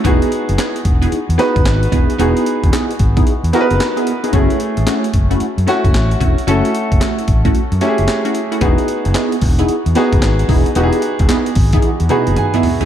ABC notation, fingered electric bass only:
X:1
M:4/4
L:1/16
Q:"Swing 16ths" 1/4=112
K:E
V:1 name="Fingered electric bass" clef=bass
E,,, z2 F,,, z2 E,,,2 z E,, z F,,, G,,,2 E,,, z | E,,, z2 E,,, z2 G,,,2 z E,, z F,,, z4 | F,,, z2 A,,, z2 F,,,2 z F,, z F,,, A,,,2 E,,, z | F,,, z2 F,,, z2 A,,,2 z F,, z F,,, z4 |
E,,, z2 F,,, z2 E,,,2 z E,, z F,,, G,,,2 E,,, z | E,,, z2 E,,, z2 G,,,2 z E,, z F,,, z4 |]